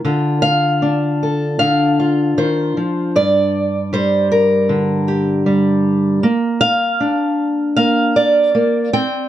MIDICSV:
0, 0, Header, 1, 2, 480
1, 0, Start_track
1, 0, Tempo, 775194
1, 23, Time_signature, 4, 2, 24, 8
1, 5750, End_track
2, 0, Start_track
2, 0, Title_t, "Steel-string acoustic guitar"
2, 0, Program_c, 0, 25
2, 28, Note_on_c, 0, 50, 73
2, 32, Note_on_c, 0, 65, 45
2, 260, Note_on_c, 0, 77, 105
2, 509, Note_on_c, 0, 62, 61
2, 761, Note_on_c, 0, 69, 46
2, 978, Note_off_c, 0, 77, 0
2, 985, Note_on_c, 0, 77, 99
2, 989, Note_off_c, 0, 50, 0
2, 997, Note_on_c, 0, 50, 62
2, 1229, Note_off_c, 0, 65, 0
2, 1236, Note_on_c, 0, 65, 48
2, 1469, Note_off_c, 0, 50, 0
2, 1471, Note_off_c, 0, 69, 0
2, 1471, Note_on_c, 0, 51, 64
2, 1473, Note_on_c, 0, 72, 84
2, 1711, Note_off_c, 0, 51, 0
2, 1715, Note_on_c, 0, 53, 60
2, 1923, Note_off_c, 0, 65, 0
2, 1947, Note_off_c, 0, 77, 0
2, 1950, Note_off_c, 0, 72, 0
2, 1952, Note_off_c, 0, 53, 0
2, 1954, Note_on_c, 0, 43, 77
2, 1957, Note_on_c, 0, 74, 93
2, 2429, Note_off_c, 0, 62, 0
2, 2431, Note_on_c, 0, 55, 62
2, 2437, Note_on_c, 0, 72, 88
2, 2670, Note_off_c, 0, 72, 0
2, 2672, Note_on_c, 0, 70, 77
2, 2905, Note_on_c, 0, 50, 61
2, 2907, Note_off_c, 0, 74, 0
2, 3146, Note_on_c, 0, 67, 51
2, 3374, Note_off_c, 0, 55, 0
2, 3381, Note_on_c, 0, 55, 65
2, 3833, Note_off_c, 0, 67, 0
2, 3856, Note_off_c, 0, 50, 0
2, 3859, Note_on_c, 0, 58, 78
2, 3860, Note_off_c, 0, 55, 0
2, 3862, Note_off_c, 0, 43, 0
2, 3863, Note_off_c, 0, 70, 0
2, 4091, Note_on_c, 0, 77, 121
2, 4337, Note_on_c, 0, 62, 64
2, 4801, Note_off_c, 0, 77, 0
2, 4805, Note_off_c, 0, 58, 0
2, 4808, Note_on_c, 0, 77, 97
2, 4812, Note_on_c, 0, 58, 65
2, 5053, Note_on_c, 0, 74, 91
2, 5284, Note_off_c, 0, 58, 0
2, 5289, Note_off_c, 0, 62, 0
2, 5292, Note_on_c, 0, 58, 65
2, 5529, Note_off_c, 0, 58, 0
2, 5529, Note_off_c, 0, 77, 0
2, 5532, Note_on_c, 0, 60, 64
2, 5532, Note_on_c, 0, 79, 109
2, 5750, Note_off_c, 0, 60, 0
2, 5750, Note_off_c, 0, 74, 0
2, 5750, Note_off_c, 0, 79, 0
2, 5750, End_track
0, 0, End_of_file